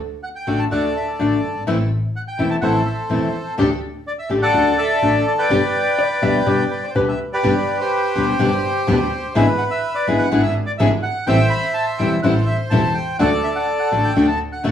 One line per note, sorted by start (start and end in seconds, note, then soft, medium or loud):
0.23 0.29 F#5 medium
0.36 0.60 G5 medium
0.47 0.68 A1 medium
0.47 0.64 D3 medium
0.47 0.64 A3 medium
0.47 0.67 D4 soft
0.47 0.65 D4 medium
0.47 0.68 F#4 soft
0.47 0.65 F#4 medium
0.47 0.68 A4 soft
0.59 0.65 A5 medium
0.71 0.92 D2 medium
0.71 0.88 D3 medium
0.71 0.89 A3 medium
0.71 0.92 D4 soft
0.71 0.89 D4 medium
0.71 0.92 F#4 soft
0.71 0.89 F#4 medium
0.71 0.92 A4 medium
0.71 1.64 A4 medium
0.71 1.64 D5 medium
0.71 0.82 F#5 medium
0.97 1.07 E5 medium
1.19 1.40 A1 medium
1.19 1.36 D3 medium
1.19 1.37 A3 medium
1.19 1.40 D4 soft
1.19 1.37 D4 medium
1.19 1.40 F#4 soft
1.19 1.37 F#4 medium
1.19 1.40 A4 medium
1.43 1.66 G1 medium
1.67 1.87 A1 medium
1.67 1.76 E3 medium
1.67 1.76 A3 loud
1.67 1.87 C4 medium
1.67 1.77 C4 medium
1.67 1.88 E4 medium
1.67 1.77 E4 loud
1.67 1.88 A4 medium
2.16 2.21 F#5 medium
2.28 2.50 G5 medium
2.38 2.59 E1 medium
2.38 2.56 E3 medium
2.38 2.56 A3 medium
2.38 2.59 C4 soft
2.38 2.56 C4 medium
2.38 2.59 E4 soft
2.38 2.56 E4 medium
2.38 2.59 A4 medium
2.51 2.56 A5 medium
2.61 2.83 A1 medium
2.61 2.79 E3 medium
2.61 2.80 A3 medium
2.61 2.83 C4 medium
2.61 2.80 C4 medium
2.61 2.83 E4 soft
2.61 2.80 E4 medium
2.61 2.83 A4 medium
2.61 3.55 A4 medium
2.61 3.55 C5 medium
2.61 2.73 F#5 medium
2.86 2.97 E5 medium
3.10 3.31 E1 medium
3.10 3.27 E3 medium
3.10 3.27 A3 medium
3.10 3.31 C4 medium
3.10 3.28 C4 medium
3.10 3.31 E4 soft
3.10 3.28 E4 medium
3.10 3.31 A4 medium
3.58 3.79 D2 medium
3.58 3.67 D3 medium
3.58 3.67 A3 medium
3.58 3.79 D4 medium
3.58 3.68 D4 medium
3.58 3.79 G4 medium
3.58 3.68 G4 medium
3.58 3.79 A4 medium
4.07 4.12 D5 medium
4.19 4.30 E5 medium
4.29 4.50 A1 medium
4.29 4.47 D3 medium
4.29 4.47 A3 medium
4.29 4.47 D4 medium
4.29 4.51 D4 soft
4.29 4.51 G4 soft
4.29 4.48 G4 medium
4.29 4.51 A4 medium
4.42 4.77 A4 medium
4.42 5.26 D5 medium
4.42 4.76 F#5 loud
4.53 4.75 D2 medium
4.53 4.71 D3 medium
4.53 4.71 A3 medium
4.53 4.71 D4 medium
4.53 4.75 D4 soft
4.53 4.75 F#4 soft
4.53 4.72 F#4 medium
4.53 4.75 A4 medium
4.78 5.46 A4 medium
4.78 5.23 E5 medium
5.02 5.23 A1 medium
5.02 5.19 D3 medium
5.02 5.19 A3 medium
5.02 5.22 D4 medium
5.02 5.20 D4 medium
5.02 5.22 F#4 soft
5.02 5.20 F#4 medium
5.02 5.22 A4 medium
5.27 5.32 D5 medium
5.39 6.70 B4 medium
5.39 6.86 D5 medium
5.39 6.91 G5 loud
5.50 5.71 G1 medium
5.50 5.59 B2 medium
5.50 5.59 D3 medium
5.50 5.60 G3 medium
5.50 5.60 B3 medium
5.50 5.70 D4 medium
5.50 5.70 G4 medium
5.50 5.60 G4 loud
5.50 5.71 B4 medium
5.99 6.05 D5 medium
6.22 6.43 D2 medium
6.22 6.39 B2 medium
6.22 6.39 D3 medium
6.22 6.40 G3 medium
6.22 6.40 B3 medium
6.22 6.43 D4 soft
6.22 6.43 G4 soft
6.22 6.40 G4 medium
6.22 6.43 B4 medium
6.22 6.46 E5 medium
6.46 6.67 G1 medium
6.46 6.63 B2 medium
6.46 6.63 D3 medium
6.46 6.64 G3 medium
6.46 6.64 B3 medium
6.46 6.67 D4 soft
6.46 6.67 G4 soft
6.46 6.64 G4 medium
6.46 6.67 B4 medium
6.46 6.97 D5 medium
6.71 6.82 B4 medium
6.84 6.86 C5 medium
6.84 6.90 D5 medium
6.90 6.95 C5 medium
6.95 7.16 D2 medium
6.95 7.12 B2 medium
6.95 7.12 D3 medium
6.95 7.13 G3 medium
6.95 7.13 B3 medium
6.95 7.16 D4 soft
6.95 7.16 G4 soft
6.95 7.13 G4 medium
6.95 7.16 B4 medium
6.95 7.40 B4 medium
6.95 7.02 D5 medium
7.09 7.19 E5 medium
7.33 7.80 G4 medium
7.33 8.25 B4 medium
7.33 7.77 D5 medium
7.43 7.64 G1 loud
7.43 7.52 B2 medium
7.43 7.53 D3 medium
7.43 7.53 G3 medium
7.43 7.53 B3 medium
7.43 7.64 D4 medium
7.43 7.64 G4 medium
7.43 7.53 G4 loud
7.43 7.64 B4 medium
7.80 9.33 G4 medium
7.80 9.41 C5 medium
8.15 8.36 D2 medium
8.15 8.33 B2 medium
8.15 8.33 D3 medium
8.15 8.33 G3 medium
8.15 8.33 B3 medium
8.15 8.36 D4 soft
8.15 8.33 G4 medium
8.15 8.36 G4 soft
8.15 8.36 B4 medium
8.39 8.60 G1 medium
8.39 8.48 B2 medium
8.39 8.48 D3 medium
8.39 8.49 G3 medium
8.39 8.49 B3 medium
8.39 8.60 D4 medium
8.39 8.49 G4 loud
8.39 8.60 G4 medium
8.39 8.60 B4 medium
8.87 9.08 D2 loud
8.87 8.96 B2 medium
8.87 8.97 D3 medium
8.87 8.97 G3 medium
8.87 8.97 B3 loud
8.87 9.08 D4 medium
8.87 8.97 G4 loud
8.87 9.08 G4 medium
8.87 9.08 B4 medium
9.35 9.56 G#1 medium
9.35 9.45 D3 medium
9.35 9.45 G#3 medium
9.35 9.45 B3 loud
9.35 9.56 D4 medium
9.35 9.56 E4 medium
9.35 9.45 E4 medium
9.35 9.56 G#4 medium
9.35 9.45 G#4 loud
9.35 10.28 B4 medium
9.35 9.46 E5 loud
9.58 9.64 F#5 medium
9.71 9.94 E5 medium
9.95 10.06 D5 medium
10.07 10.28 G#1 medium
10.07 10.25 D3 medium
10.07 10.25 G#3 medium
10.07 10.25 B3 medium
10.07 10.28 D4 medium
10.07 10.28 E4 soft
10.07 10.25 E4 medium
10.07 10.28 G#4 medium
10.07 10.25 G#4 medium
10.19 10.42 F#5 medium
10.31 10.52 G#1 loud
10.31 10.41 D3 medium
10.31 10.41 G#3 medium
10.31 10.41 B3 medium
10.31 10.52 D4 medium
10.31 10.52 E4 medium
10.31 10.41 E4 medium
10.31 10.52 G#4 medium
10.31 10.41 G#4 medium
10.43 10.54 E5 medium
10.66 10.72 D5 medium
10.78 11.00 G#1 loud
10.78 10.89 D3 medium
10.78 10.89 G#3 medium
10.78 10.89 B3 loud
10.78 11.00 D4 medium
10.78 11.00 E4 medium
10.78 10.89 E4 medium
10.78 10.89 G#4 loud
10.78 11.00 G#4 medium
10.78 10.89 E5 medium
11.03 11.26 F#5 loud
11.27 11.48 A1 medium
11.27 11.36 E3 medium
11.27 11.37 G3 medium
11.27 11.48 C4 medium
11.27 11.37 C4 loud
11.27 11.37 E4 loud
11.27 11.48 G4 medium
11.27 11.48 A4 medium
11.27 12.20 C5 medium
11.27 12.20 E5 medium
11.27 11.49 G5 loud
11.50 11.73 B5 loud
11.74 11.85 A5 loud
11.98 12.20 E1 medium
11.98 12.17 E3 medium
11.98 12.17 G3 medium
11.98 12.20 C4 medium
11.98 12.17 C4 medium
11.98 12.17 E4 medium
11.98 12.20 G4 soft
11.98 12.20 A4 medium
11.98 12.09 G5 medium
12.23 12.44 A1 loud
12.23 12.33 E3 medium
12.23 12.33 G3 medium
12.23 12.44 C4 medium
12.23 12.33 C4 medium
12.23 12.33 E4 loud
12.23 12.44 G4 medium
12.23 12.44 A4 medium
12.23 13.16 C5 medium
12.23 12.34 F#5 medium
12.46 12.57 E5 medium
12.70 12.92 E1 loud
12.70 12.81 E3 medium
12.70 12.81 G3 medium
12.70 12.92 C4 medium
12.70 12.81 C4 medium
12.70 12.81 E4 loud
12.70 12.92 G4 medium
12.70 12.92 A4 medium
12.70 12.93 A5 loud
12.94 13.17 G5 medium
13.19 13.40 D2 loud
13.19 13.29 D3 medium
13.19 13.29 A3 medium
13.19 13.40 D4 medium
13.19 13.29 D4 loud
13.19 13.40 F#4 medium
13.19 13.29 F#4 medium
13.19 13.40 A4 medium
13.19 14.13 A4 medium
13.19 14.13 D5 medium
13.19 13.30 F#5 loud
13.43 13.49 E5 medium
13.56 13.67 F#5 medium
13.79 13.90 F#5 medium
13.92 14.12 A1 medium
13.92 14.09 D3 medium
13.92 14.09 A3 medium
13.92 14.12 D4 medium
13.92 14.09 D4 medium
13.92 14.12 F#4 soft
13.92 14.10 F#4 medium
13.92 14.12 A4 medium
14.04 14.27 G5 medium
14.15 14.36 D2 medium
14.15 14.25 D3 medium
14.15 14.25 A3 medium
14.15 14.36 D4 medium
14.15 14.26 D4 medium
14.15 14.36 F#4 medium
14.15 14.26 F#4 medium
14.15 14.36 A4 medium
14.28 14.39 A5 medium
14.52 14.63 F#5 medium
14.64 14.71 A1 loud
14.64 14.71 D3 medium
14.64 14.71 A3 medium
14.64 14.71 D4 medium
14.64 14.71 F#4 medium
14.64 14.71 F#4 loud
14.64 14.71 A4 medium